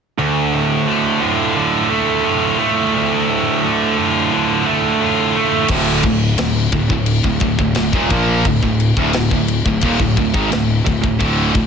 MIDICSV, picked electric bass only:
0, 0, Header, 1, 2, 480
1, 0, Start_track
1, 0, Key_signature, -1, "minor"
1, 0, Tempo, 687285
1, 138, Time_signature, 4, 2, 24, 8
1, 3975, Key_signature, -1, "minor"
1, 8148, End_track
2, 0, Start_track
2, 0, Title_t, "Picked electric bass"
2, 0, Program_c, 0, 34
2, 3979, Note_on_c, 0, 26, 92
2, 4201, Note_off_c, 0, 26, 0
2, 4217, Note_on_c, 0, 26, 78
2, 4440, Note_off_c, 0, 26, 0
2, 4459, Note_on_c, 0, 26, 76
2, 4681, Note_off_c, 0, 26, 0
2, 4702, Note_on_c, 0, 26, 80
2, 4811, Note_off_c, 0, 26, 0
2, 4821, Note_on_c, 0, 26, 80
2, 5042, Note_off_c, 0, 26, 0
2, 5057, Note_on_c, 0, 26, 73
2, 5169, Note_off_c, 0, 26, 0
2, 5180, Note_on_c, 0, 26, 65
2, 5290, Note_off_c, 0, 26, 0
2, 5298, Note_on_c, 0, 26, 84
2, 5409, Note_off_c, 0, 26, 0
2, 5431, Note_on_c, 0, 26, 80
2, 5536, Note_off_c, 0, 26, 0
2, 5542, Note_on_c, 0, 27, 81
2, 5651, Note_off_c, 0, 27, 0
2, 5660, Note_on_c, 0, 34, 106
2, 5882, Note_off_c, 0, 34, 0
2, 5904, Note_on_c, 0, 26, 81
2, 6013, Note_off_c, 0, 26, 0
2, 6024, Note_on_c, 0, 26, 72
2, 6245, Note_off_c, 0, 26, 0
2, 6264, Note_on_c, 0, 26, 84
2, 6373, Note_off_c, 0, 26, 0
2, 6398, Note_on_c, 0, 26, 69
2, 6497, Note_off_c, 0, 26, 0
2, 6501, Note_on_c, 0, 26, 88
2, 6723, Note_off_c, 0, 26, 0
2, 6748, Note_on_c, 0, 26, 73
2, 6855, Note_off_c, 0, 26, 0
2, 6864, Note_on_c, 0, 27, 102
2, 6974, Note_off_c, 0, 27, 0
2, 6982, Note_on_c, 0, 26, 84
2, 7092, Note_off_c, 0, 26, 0
2, 7105, Note_on_c, 0, 26, 70
2, 7214, Note_off_c, 0, 26, 0
2, 7224, Note_on_c, 0, 32, 102
2, 7334, Note_off_c, 0, 32, 0
2, 7353, Note_on_c, 0, 26, 80
2, 7571, Note_off_c, 0, 26, 0
2, 7587, Note_on_c, 0, 26, 91
2, 7696, Note_off_c, 0, 26, 0
2, 7706, Note_on_c, 0, 26, 80
2, 7815, Note_off_c, 0, 26, 0
2, 7826, Note_on_c, 0, 26, 99
2, 8047, Note_off_c, 0, 26, 0
2, 8066, Note_on_c, 0, 26, 74
2, 8148, Note_off_c, 0, 26, 0
2, 8148, End_track
0, 0, End_of_file